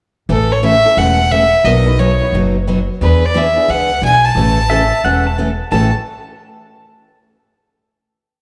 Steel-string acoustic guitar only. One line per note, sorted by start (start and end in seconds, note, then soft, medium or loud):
0.29 0.50 C#3 medium
0.29 0.51 E3 medium
0.29 0.51 A3 medium
0.29 0.51 C#4 medium
0.29 0.51 A4 medium
0.62 0.74 C#3 medium
0.62 0.74 E3 medium
0.62 0.74 A3 medium
0.62 0.75 C#4 medium
0.62 0.75 A4 medium
0.97 1.18 C#3 medium
0.97 1.19 E3 medium
0.97 1.19 A3 medium
0.97 1.19 C#4 medium
0.97 1.19 A4 medium
1.31 1.42 C#3 medium
1.31 1.43 E3 medium
1.31 1.43 A3 medium
1.31 1.43 C#4 medium
1.31 1.43 A4 medium
1.66 1.87 B2 medium
1.66 1.87 F#3 medium
1.66 1.87 B3 medium
1.66 1.87 D#4 medium
1.66 1.87 F#4 medium
1.99 2.10 B2 medium
1.99 2.10 F#3 medium
1.99 2.11 B3 medium
1.99 2.11 D#4 medium
1.99 2.11 F#4 medium
2.34 2.55 B2 medium
2.34 2.55 F#3 medium
2.34 2.55 B3 medium
2.34 2.55 D#4 medium
2.34 2.55 F#4 medium
2.67 2.78 B2 medium
2.67 2.79 F#3 medium
2.67 2.79 B3 medium
2.67 2.79 D#4 medium
2.67 2.79 F#4 medium
3.01 3.22 E3 medium
3.01 3.23 B3 medium
3.01 3.23 D4 medium
3.01 3.23 G#4 medium
3.34 3.46 E3 medium
3.34 3.46 B3 medium
3.34 3.46 D4 medium
3.34 3.46 G#4 medium
3.68 3.90 E3 medium
3.68 3.90 B3 medium
3.68 3.90 D4 medium
3.68 3.90 G#4 medium
4.03 4.14 E3 medium
4.03 4.14 B3 medium
4.03 4.14 D4 medium
4.03 4.14 G#4 medium
4.36 4.58 C#3 medium
4.36 4.58 E3 medium
4.36 4.58 A3 medium
4.36 4.58 C#4 medium
4.36 4.58 A4 medium
4.70 4.81 C#3 medium
4.70 4.82 E3 medium
4.70 4.82 A3 medium
4.70 4.82 C#4 medium
4.70 4.82 A4 medium
5.04 5.26 C#3 medium
5.04 5.26 E3 medium
5.04 5.26 A3 medium
5.04 5.26 C#4 medium
5.04 5.26 A4 medium
5.38 5.49 C#3 medium
5.38 5.49 E3 medium
5.38 5.50 A3 medium
5.38 5.50 C#4 medium
5.38 5.50 A4 medium
5.72 5.89 A2 medium
5.72 5.89 C#3 medium
5.72 5.89 E3 medium
5.72 5.89 A3 medium
5.72 5.90 C#4 medium
5.72 5.90 A4 medium